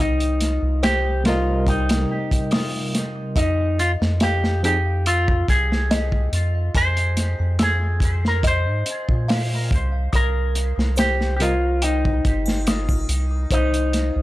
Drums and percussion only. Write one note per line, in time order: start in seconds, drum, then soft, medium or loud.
0.20 closed hi-hat soft
0.41 snare soft
0.41 closed hi-hat medium
0.83 snare loud
0.83 closed hi-hat medium
1.25 snare loud
1.25 closed hi-hat medium
1.67 kick medium
1.67 closed hi-hat medium
1.89 snare loud
1.89 closed hi-hat medium
2.31 kick medium
2.31 closed hi-hat medium
2.51 snare loud
2.51 open hi-hat medium
2.95 snare soft
2.95 closed hi-hat medium
3.36 kick loud
3.36 closed hi-hat loud
3.79 closed hi-hat medium
4.02 snare medium
4.20 snare loud
4.20 closed hi-hat medium
4.44 snare soft
4.64 closed hi-hat medium
5.06 closed hi-hat medium
5.28 kick loud
5.48 kick medium
5.48 closed hi-hat medium
5.72 snare soft
5.91 snare loud
5.91 closed hi-hat medium
6.12 kick medium
6.33 closed hi-hat medium
6.75 kick loud
6.75 closed hi-hat medium
6.97 closed hi-hat soft
7.17 snare soft
7.17 closed hi-hat medium
7.59 snare loud
7.59 closed hi-hat medium
8.00 kick loud
8.00 closed hi-hat medium
8.25 snare soft
8.43 kick loud
8.43 closed hi-hat medium
8.86 closed hi-hat medium
9.09 kick medium
9.29 snare loud
9.29 open hi-hat medium
9.71 kick loud
9.71 closed hi-hat medium
10.13 kick loud
10.13 closed hi-hat medium
10.55 closed hi-hat medium
10.79 snare soft
10.97 snare loud
10.97 closed hi-hat medium
10.97 shaker medium
11.21 snare soft
11.40 closed hi-hat medium
11.82 closed hi-hat medium
12.05 kick loud
12.25 kick medium
12.25 closed hi-hat medium
12.46 snare soft
12.46 triangle medium
12.67 snare loud
12.67 closed hi-hat medium
12.67 shaker medium
12.89 kick loud
12.89 triangle medium
13.09 closed hi-hat medium
13.51 kick loud
13.51 closed hi-hat medium
13.74 closed hi-hat soft
13.93 snare soft
13.93 closed hi-hat medium